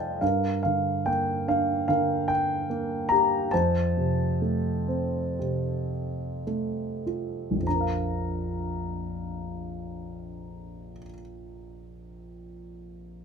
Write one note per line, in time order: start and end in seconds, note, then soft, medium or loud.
0.00 0.18 F2 medium
0.00 0.18 F3 soft
0.00 0.23 A3 soft
0.00 0.23 C5 soft
0.00 0.23 D5 medium
0.00 0.24 D#5 medium
0.00 0.21 F5 medium
0.00 0.23 G5 medium
0.00 0.24 A5 medium
0.21 3.48 G2 soft
0.21 1.85 A#4 soft
0.21 0.61 F5 medium
0.63 1.87 D3 soft
0.63 1.07 F5 medium
1.06 2.66 A#3 soft
1.06 1.48 G5 medium
1.48 3.06 D4 soft
1.48 1.86 F5 medium
1.88 3.48 D3 soft
1.88 3.48 A#4 soft
1.88 2.30 F5 medium
2.28 3.12 G5 medium
2.70 3.49 A#3 soft
3.09 3.51 G4 soft
3.09 3.52 A#5 medium
3.51 7.55 F2 soft
3.51 6.43 C5 soft
3.51 6.42 A5 medium
3.97 5.38 C3 soft
4.42 6.43 A3 soft
4.88 7.02 C4 soft
5.39 7.63 C3 soft
6.47 7.63 A3 soft
7.06 7.64 F4 soft
7.51 10.90 A#1 soft
7.57 10.96 F2 soft
7.63 11.02 F3 soft
7.67 11.08 D4 soft
7.67 11.06 A#5 soft
7.75 11.14 A#4 soft
7.81 11.20 F5 soft